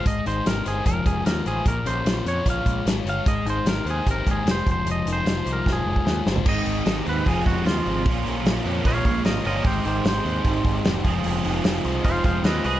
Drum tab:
CC |----------------|----------------|----------------|----------------|
HH |x-x-x-x-x-x-x-x-|x-x-x-x-x-x-x-x-|x-x-x-x-x-x-x-x-|x-x-x-x---------|
SD |----o-------o---|----o-------o---|----o-------o---|----o---o---o-o-|
T1 |----------------|----------------|----------------|---------o------|
FT |----------------|----------------|----------------|---------------o|
BD |o-------o-o-----|o-------o-o-----|o-------o-o---o-|--------o--o----|

CC |x---------------|----------------|----------------|----------------|
HH |--o-o-o-o-o-o-o-|o-o-o-o-o-o-o-o-|o-o-o-o-o-o-o-o-|o-o-o-o-o-o-o-o-|
SD |----o-------o---|----o-------o---|----o-------o---|----o-------o---|
T1 |----------------|----------------|----------------|----------------|
FT |----------------|----------------|----------------|----------------|
BD |o-------o-o-----|o-------o-o-----|o-------o-o---o-|--------o-o-----|